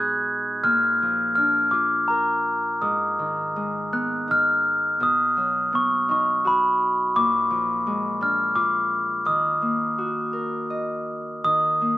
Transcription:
Already playing: B2 G#3 B3 D#4 F#4 G#4 F#6
0.64 A#2 F6
1.02 F3
1.35 D4 F6
1.71 F4 D6
2.08 A#4 A#5
2.82 G#2 D#6
3.19 D#3
3.56 G#3
3.93 B3 F#6
4.28 D#4 F6
5.00 B2 D#6
5.37 F#3
5.72 B3 C#6
6.09 D#4 C#6
6.45 F#4 B5
7.16 A#2 D6
7.50 F3
7.87 G#3
8.21 D4 F6
8.56 F4 D6
9.25 D#3 D#6
9.62 A#3
9.98 F#4
10.33 A#4
10.70 D#5
11.44 D#3 D#6
11.81 A#3

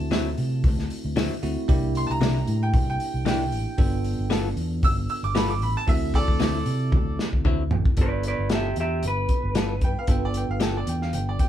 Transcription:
Already playing: A3 C4 E4 F#4 A5
0.00 D2
0.11 D3 F#3 C4 E4, snare, open hi-hat
0.38 C3, open hi-hat
0.64 D2, kick, open hi-hat
0.79 snare
0.90 open hi-hat
1.05 D2
1.16 D3 F#3 C4 E4, snare, open hi-hat
1.42 D2 A3 C4 E4 F#4, open hi-hat
1.68 C2 A#3 D4 E4 G4, kick, open hi-hat
1.95 C6, open hi-hat
2.07 C2 A5
2.11 A#5
2.21 C3 A#3 D4 E4, snare, open hi-hat
2.47 A2, open hi-hat
2.63 G5
2.74 C2, kick, open hi-hat
2.90 G5
3.00 open hi-hat
3.14 C2
3.26 C3 A#3 D4 E4 G5, snare, open hi-hat
3.52 A1, open hi-hat
3.78 G1 B3 D4 F4 A4, kick, open hi-hat
4.04 open hi-hat
4.19 G1
4.30 G3 B3 F4 A4, snare, open hi-hat
4.56 E2, open hi-hat
4.83 G1 E6, kick, open hi-hat
5.09 E6, open hi-hat
5.23 G1 D6
5.35 G3 B3 F4 A4 B5, snare, open hi-hat
5.50 D6
5.61 A1 B5, open hi-hat
5.77 A5
5.87 D2 C4 E4 F#4 A4 E5, kick, open hi-hat
6.14 A4 D5, kick, open hi-hat
6.28 D2, kick
6.40 D3 F#3 C4 E4, snare, open hi-hat
6.66 C3, open hi-hat
6.92 D2, kick, high tom
7.19 snare
7.33 D2, kick
7.45 D3 F#3 C4 E4, kick
7.71 A1, floor tom
7.85 kick
7.97 G1 B3 D4 F4 A4, kick, closed hi-hat
8.01 B4 D5
8.23 closed hi-hat
8.27 B4 D5
8.39 G1
8.50 G3 B3 F4 A4, snare, closed hi-hat
8.54 G4 E5
8.76 E2, closed hi-hat
8.80 G4 E5
9.03 G1, closed hi-hat
9.08 B4
9.29 kick, closed hi-hat
9.43 G1
9.55 G3 B3 F4 A4, snare, closed hi-hat
9.81 G2 G5, kick, closed hi-hat
9.99 F5
10.07 G1 B3 D4 F4 A4 G5, kick, closed hi-hat
10.25 D5
10.34 G5, closed hi-hat
10.48 G1 F5
10.60 G3 B3 F4 A4 G5, snare, closed hi-hat
10.77 D5
10.87 E2 G5, closed hi-hat
11.02 F5, snare
11.13 G1 G5, closed hi-hat
11.29 D5
11.39 G5, kick, closed hi-hat

